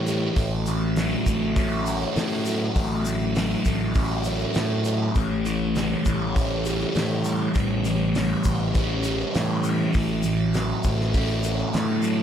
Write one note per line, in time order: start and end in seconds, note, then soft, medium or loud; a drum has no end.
0.00 0.28 A2 medium
0.00 1.01 E3 medium
0.00 1.57 C#4 medium
0.00 0.33 G4 medium
0.00 0.35 B4 medium
0.00 0.33 C#5 medium
0.07 0.37 G3 medium
0.07 open hi-hat medium
0.07 shaker medium
0.36 1.14 A1 loud
0.36 0.67 A2 medium
0.36 5.12 F#4 medium
0.36 7.52 A4 medium
0.36 5.12 E5 medium
0.36 kick loud
0.36 open hi-hat medium
0.36 shaker medium
0.66 1.27 A2 medium
0.66 open hi-hat medium
0.66 shaker medium
0.96 1.86 F#3 medium
0.96 snare loud
0.96 open hi-hat medium
0.96 shaker medium
1.26 2.04 A1 medium
1.26 2.17 A2 medium
1.26 kick medium
1.26 open hi-hat medium
1.26 shaker loud
1.56 3.96 C#4 medium
1.56 kick loud
1.56 open hi-hat medium
1.56 shaker medium
1.86 2.45 F#3 medium
1.86 open hi-hat medium
1.86 shaker medium
2.01 shaker soft
2.16 2.68 A2 medium
2.16 2.76 A2 medium
2.16 snare loud
2.16 open hi-hat medium
2.16 shaker medium
2.45 3.35 F#3 medium
2.45 open hi-hat medium
2.45 shaker medium
2.75 3.54 A1 loud
2.75 3.06 A2 medium
2.75 kick loud
2.75 open hi-hat medium
2.75 shaker medium
3.05 3.66 A2 medium
3.05 open hi-hat medium
3.05 shaker loud
3.21 shaker soft
3.35 4.25 F#3 medium
3.35 snare loud
3.35 open hi-hat medium
3.35 shaker medium
3.65 4.44 A1 medium
3.65 4.55 A2 medium
3.65 kick medium
3.65 open hi-hat medium
3.65 shaker medium
3.94 5.79 C#4 medium
3.94 kick loud
3.94 open hi-hat medium
3.94 shaker medium
4.24 4.84 F#3 medium
4.24 open hi-hat medium
4.24 shaker medium
4.39 shaker soft
4.54 5.15 A2 medium
4.54 5.07 A2 medium
4.54 snare loud
4.54 open hi-hat medium
4.54 shaker medium
4.85 5.15 F#3 medium
4.85 open hi-hat soft
4.85 shaker medium
5.15 5.93 A1 medium
5.15 6.69 A2 medium
5.15 9.91 G4 medium
5.15 9.91 C#5 medium
5.15 kick loud
5.15 open hi-hat medium
5.15 shaker medium
5.45 6.06 E3 medium
5.45 open hi-hat medium
5.45 shaker medium
5.76 6.65 G3 medium
5.76 snare medium
5.76 open hi-hat medium
5.76 shaker medium
6.05 6.83 A1 medium
6.05 6.96 E3 medium
6.05 kick medium
6.05 open hi-hat medium
6.05 shaker medium
6.36 8.18 C#4 medium
6.36 kick loud
6.36 open hi-hat medium
6.36 shaker medium
6.65 7.24 G3 medium
6.65 open hi-hat medium
6.65 shaker medium
6.80 shaker soft
6.94 7.47 A2 medium
6.94 7.85 E3 medium
6.94 snare loud
6.94 open hi-hat medium
6.94 shaker medium
7.24 8.14 G3 medium
7.24 open hi-hat medium
7.24 shaker medium
7.54 8.33 A1 medium
7.54 9.09 A2 medium
7.54 9.93 B4 medium
7.54 kick loud
7.54 open hi-hat medium
7.54 shaker medium
7.85 8.45 E3 medium
7.85 open hi-hat medium
7.85 shaker medium
8.15 9.05 G3 medium
8.15 snare loud
8.15 open hi-hat medium
8.15 shaker medium
8.44 9.23 A1 medium
8.44 9.35 E3 medium
8.44 kick medium
8.44 open hi-hat medium
8.44 shaker medium
8.74 11.14 C#4 medium
8.74 kick loud
8.74 open hi-hat medium
8.74 shaker medium
9.04 9.64 G3 medium
9.04 open hi-hat medium
9.04 shaker medium
9.20 shaker soft
9.35 9.87 A2 medium
9.35 10.58 E3 medium
9.35 snare loud
9.35 open hi-hat medium
9.35 shaker medium
9.64 9.95 G3 medium
9.64 open hi-hat medium
9.64 shaker medium
9.93 10.72 A1 medium
9.93 10.24 A2 medium
9.93 12.23 F#4 medium
9.93 12.23 A4 medium
9.93 12.23 E5 medium
9.93 kick loud
9.93 open hi-hat medium
9.93 shaker medium
10.23 10.84 A2 medium
10.23 open hi-hat medium
10.23 shaker loud
10.54 11.43 F#3 medium
10.54 snare loud
10.54 open hi-hat medium
10.54 shaker medium
10.83 11.62 A1 medium
10.83 11.73 A2 medium
10.83 kick medium
10.83 open hi-hat medium
10.83 shaker medium
11.01 snare soft
11.14 12.23 C#4 medium
11.14 kick loud
11.14 open hi-hat medium
11.14 shaker medium
11.43 12.02 F#3 medium
11.43 open hi-hat medium
11.43 shaker loud
11.59 shaker soft
11.74 12.23 A2 medium
11.74 snare loud
11.74 open hi-hat medium
11.74 shaker medium
12.02 12.23 F#3 medium
12.02 open hi-hat medium
12.02 shaker medium